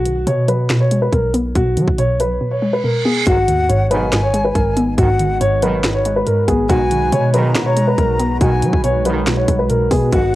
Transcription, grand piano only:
0.00 0.24 F#4 loud
0.27 0.45 C#5 medium
0.48 0.78 B4 medium
0.80 0.98 C#5 medium
1.02 1.11 B4 medium
1.13 1.31 A#4 medium
1.56 1.96 F#4 loud
1.98 2.16 C#5 medium
2.20 2.50 B4 medium
2.51 2.69 C#5 medium
2.73 2.82 B4 medium
2.84 3.02 A#4 medium
3.05 3.23 G#4 medium
3.27 3.67 F#4 loud
3.69 3.87 C#5 medium
3.91 4.21 B4 medium
4.23 4.41 C#5 medium
4.45 4.54 B4 medium
4.55 4.73 A#4 medium
4.98 5.38 F#4 loud
5.41 5.59 C#5 loud
5.63 5.93 B4 medium
5.95 6.13 C#5 medium
6.16 6.25 B4 medium
6.26 6.45 A#4 medium
6.48 6.66 G#4 medium
6.69 7.10 F#4 loud
7.12 7.30 C#5 medium
7.34 7.64 B4 medium
7.66 7.84 C#5 medium
7.88 7.97 B4 medium
7.98 8.16 A#4 medium
8.41 8.81 F#4 loud
8.84 9.02 C#5 medium
9.06 9.36 B4 medium
9.37 9.55 C#5 medium
9.59 9.68 B4 medium
9.70 9.88 A#4 medium
9.91 10.09 G#4 medium
10.13 10.35 F#4 loud

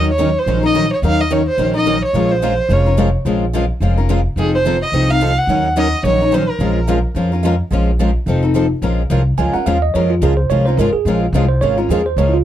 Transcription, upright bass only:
0.00 0.35 D#2 medium
0.46 0.91 A#1 medium
1.02 1.47 D#2 medium
1.58 2.02 A#1 medium
2.13 2.58 A#1 medium
2.69 3.14 F1 medium
3.25 3.70 A#1 medium
3.80 4.25 F1 medium
4.36 4.81 F1 medium
4.92 5.37 C2 medium
5.47 5.92 D#2 medium
6.03 6.48 A#1 medium
6.59 7.04 A#1 medium
7.15 7.59 F2 medium
7.71 8.15 A#1 medium
8.26 8.71 F1 medium
8.82 9.09 A#1 medium
9.10 9.37 C2 medium
9.38 9.53 C#2 medium
9.54 muted upright bass stroke soft
9.66 9.93 D#2 medium
9.95 10.21 F2 medium
10.22 10.49 C#2 medium
10.50 10.77 C2 medium
10.77 10.92 G#1 medium
10.93 muted upright bass stroke soft
11.05 11.32 A#1 medium
11.33 11.60 C2 medium
11.61 11.88 G#1 medium
11.89 12.16 D#2 medium
12.16 12.44 C#2 medium

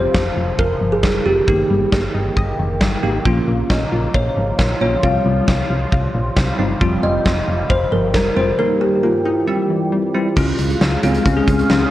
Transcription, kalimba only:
0.00 0.61 C5 loud
0.59 0.93 A#4 loud
0.92 1.26 G#4 medium
1.25 2.55 G4 medium
3.70 4.11 D#5 medium
4.14 4.80 C#5 medium
4.81 5.04 C#5 medium
5.03 6.33 F5 loud
7.03 7.72 D#5 loud
7.70 7.93 C5 loud
7.92 8.13 A#4 medium
8.14 8.37 A#4 medium
8.37 8.57 C5 medium
8.59 8.82 A#4 loud
8.81 9.04 G4 medium
9.03 9.26 F4 medium
9.26 9.88 E4 medium
10.37 11.05 G#3 medium
11.03 11.26 C4 medium
11.26 11.69 C#4 loud
11.70 11.91 C#4 loud

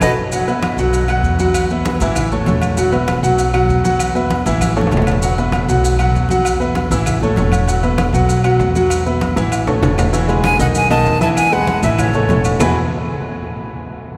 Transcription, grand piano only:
0.02 0.12 F#4 loud
0.02 0.12 A4 loud
0.02 0.12 B4 loud
0.33 0.45 F#3 medium
0.33 0.45 F#4 medium
0.33 0.46 F#5 medium
0.48 0.73 B3 medium
0.48 0.73 B4 medium
0.48 0.73 E5 medium
0.79 1.04 F#3 medium
0.79 1.04 F#4 medium
0.79 1.04 F#5 medium
1.09 1.34 F#3 medium
1.09 1.35 F#4 medium
1.09 1.35 F#5 loud
1.40 1.65 F#3 medium
1.40 1.65 F#4 loud
1.40 1.65 F#5 medium
1.71 1.96 B3 medium
1.71 1.96 B4 medium
1.71 1.96 E5 medium
2.02 2.27 E3 medium
2.02 2.27 E4 medium
2.02 2.27 E5 medium
2.32 2.44 A3 medium
2.32 2.44 A4 medium
2.32 2.45 C#5 medium
2.47 2.72 A3 medium
2.47 2.72 A4 medium
2.47 2.72 C#5 medium
2.78 2.90 F#3 medium
2.78 2.90 F#4 medium
2.78 2.91 F#5 medium
2.92 3.18 B3 medium
2.92 3.18 B4 medium
2.92 3.18 E5 medium
3.23 3.48 F#3 medium
3.23 3.48 F#4 medium
3.23 3.49 F#5 medium
3.53 3.79 F#3 loud
3.53 3.79 F#4 loud
3.53 3.79 F#5 loud
3.84 4.09 F#3 loud
3.84 4.10 F#4 medium
3.84 4.10 F#5 medium
4.15 4.40 B3 medium
4.15 4.41 B4 medium
4.15 4.41 E5 medium
4.46 4.71 E3 medium
4.46 4.71 E4 medium
4.46 4.72 E5 medium
4.76 4.89 A3 medium
4.76 4.89 A4 medium
4.76 4.89 C#5 medium
4.91 5.17 A3 medium
4.91 5.17 A4 medium
4.91 5.17 C#5 medium
5.22 5.35 F#3 medium
5.22 5.35 F#4 medium
5.22 5.35 F#5 medium
5.38 5.63 B3 medium
5.38 5.64 B4 medium
5.38 5.63 E5 medium
5.69 5.94 F#3 medium
5.69 5.94 F#4 medium
5.69 5.94 F#5 medium
6.00 6.25 F#3 medium
6.00 6.25 F#4 medium
6.00 6.25 F#5 loud
6.30 6.55 F#3 medium
6.30 6.55 F#4 medium
6.30 6.56 F#5 medium
6.60 6.85 B3 medium
6.60 6.86 B4 medium
6.60 6.86 E5 medium
6.91 7.17 E3 medium
6.91 7.17 E4 medium
6.91 7.17 E5 medium
7.22 7.35 A3 medium
7.22 7.35 A4 medium
7.22 7.35 C#5 medium
7.38 7.63 A3 medium
7.38 7.63 A4 medium
7.38 7.63 C#5 medium
7.68 7.81 F#3 medium
7.68 7.81 F#4 medium
7.68 7.81 F#5 medium
7.83 8.09 B3 medium
7.83 8.09 B4 medium
7.83 8.09 E5 medium
8.14 8.39 F#3 medium
8.14 8.39 F#4 medium
8.14 8.40 F#5 medium
8.44 8.70 F#3 loud
8.44 8.70 F#4 medium
8.44 8.70 F#5 medium
8.76 9.01 F#3 medium
8.76 9.01 F#4 medium
8.76 9.01 F#5 medium
9.06 9.31 B3 medium
9.06 9.32 B4 medium
9.06 9.32 E5 medium
9.36 9.62 E3 medium
9.36 9.62 E4 medium
9.36 9.62 E5 medium
9.67 9.80 A3 medium
9.67 9.80 A4 medium
9.67 9.80 C#5 medium
9.82 10.08 A3 medium
9.82 10.08 A4 medium
9.82 10.08 C#5 medium
10.13 10.26 E3 medium
10.13 10.26 E4 medium
10.13 10.26 E5 medium
10.28 10.54 G#3 medium
10.28 10.54 G#4 medium
10.28 10.54 B4 medium
10.59 10.85 D#3 medium
10.59 10.85 D#4 medium
10.59 10.85 D#5 medium
10.90 11.16 D#3 loud
10.90 11.16 D#4 loud
10.90 11.16 D#5 loud
11.21 11.46 E3 medium
11.21 11.47 E4 loud
11.21 11.47 E5 medium
11.52 11.77 G#3 medium
11.52 11.77 G#4 medium
11.52 11.78 B4 medium
11.84 12.09 E3 medium
11.84 12.09 E4 medium
11.84 12.09 E5 loud
12.15 12.27 A3 medium
12.15 12.27 A4 medium
12.15 12.27 C#5 medium
12.30 12.55 A3 medium
12.30 12.55 A4 medium
12.30 12.55 C#5 medium
12.60 12.74 E3 medium
12.60 12.74 B3 medium
12.60 12.75 E4 medium
12.60 12.75 F#4 medium
12.60 12.75 G#4 medium
12.60 12.75 B4 loud

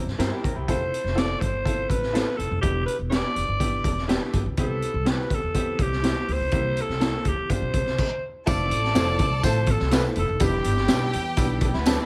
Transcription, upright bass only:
0.07 0.17 G2 medium
0.19 0.29 G2 medium
0.44 0.54 E2 medium
0.56 0.66 C2 medium
0.68 0.89 F1 medium
1.04 1.36 F1 medium
1.42 1.83 G1 medium
1.90 2.21 A1 medium
2.39 2.49 F1 medium
2.51 2.61 F1 medium
2.63 2.84 E1 loud
2.99 3.20 E1 medium
3.36 3.46 F1 medium
3.48 3.80 G1 medium
3.85 4.16 E1 medium
4.33 4.44 G1 medium
4.46 4.56 C#2 loud
4.58 4.79 C2 medium
4.94 5.15 C2 loud
5.30 5.41 D2 medium
5.43 5.75 E2 medium
5.79 6.11 C2 medium
6.28 6.39 D2 medium
6.40 6.51 C#2 medium
6.53 6.74 C2 loud
6.89 7.10 C2 medium
7.25 7.36 D2 medium
7.38 7.49 E2 medium
7.49 7.60 G1 medium
7.62 7.72 B1 medium
7.74 7.85 C2 medium
7.86 7.97 C2 medium
8.47 8.68 F1 loud
8.71 8.92 A1 medium
8.96 9.17 F1 loud
9.20 9.41 C2 loud
9.44 9.75 A1 loud
9.80 10.01 C2 loud
10.17 10.27 F1 medium
10.29 10.39 F1 medium
10.41 10.62 E1 loud
10.65 10.86 G1 loud
10.90 11.11 B1 loud
11.15 11.35 E2 medium
11.37 11.69 B1 loud
11.74 11.95 D2 medium

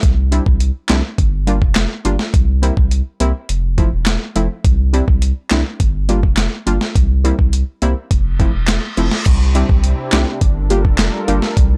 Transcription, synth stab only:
0.31 0.43 G3 medium
0.31 0.43 C4 medium
0.31 0.43 D4 medium
0.31 0.43 E4 loud
0.89 1.01 G3 medium
0.89 1.01 C4 medium
0.89 1.01 D4 medium
0.89 1.01 E4 loud
1.47 1.59 G3 medium
1.47 1.59 A#3 medium
1.47 1.59 D4 medium
1.47 1.59 F4 medium
2.05 2.16 G3 medium
2.05 2.16 A#3 medium
2.05 2.16 D4 medium
2.05 2.17 F4 medium
2.62 2.74 G3 medium
2.62 2.74 A#3 medium
2.62 2.74 C4 medium
2.62 2.74 E4 loud
3.20 3.32 G3 medium
3.20 3.32 A#3 medium
3.20 3.32 C4 medium
3.20 3.32 E4 loud
3.78 3.89 F3 medium
3.78 3.89 A3 medium
3.78 3.90 C4 medium
3.78 3.90 E4 loud
4.35 4.47 F3 medium
4.35 4.47 A3 medium
4.35 4.47 C4 medium
4.35 4.47 E4 medium
4.93 5.05 G3 medium
4.93 5.05 C4 medium
4.93 5.05 D4 medium
4.93 5.05 E4 loud
5.51 5.63 G3 medium
5.51 5.63 C4 medium
5.51 5.63 D4 medium
5.51 5.63 E4 loud
6.09 6.20 G3 medium
6.09 6.20 A#3 medium
6.09 6.20 D4 medium
6.09 6.20 F4 medium
6.66 6.78 G3 medium
6.66 6.78 A#3 medium
6.66 6.78 D4 medium
6.66 6.78 F4 loud
7.24 7.36 G3 medium
7.24 7.36 A#3 medium
7.24 7.36 C4 medium
7.24 7.36 E4 loud
7.82 7.93 G3 medium
7.82 7.93 A#3 medium
7.82 7.94 C4 medium
7.82 7.94 E4 loud
8.39 8.51 F3 medium
8.39 8.51 A3 medium
8.39 8.51 C4 medium
8.39 8.51 E4 medium
8.97 9.09 F3 medium
8.97 9.09 A3 medium
8.97 9.09 C4 medium
8.97 9.09 E4 medium
9.55 9.66 G3 medium
9.55 9.67 C4 medium
9.55 9.67 D4 medium
9.55 9.67 E4 medium
9.55 9.67 G4 loud
10.13 10.24 G3 medium
10.13 10.24 C4 medium
10.13 10.24 D4 medium
10.13 10.24 E4 medium
10.13 10.24 G4 loud
10.70 10.82 G3 medium
10.70 10.82 A#3 medium
10.70 10.82 D4 medium
10.70 10.82 F4 medium
10.70 10.82 G4 loud
11.28 11.39 G3 medium
11.28 11.39 A#3 medium
11.28 11.40 D4 medium
11.28 11.40 F4 medium
11.28 11.40 G4 medium

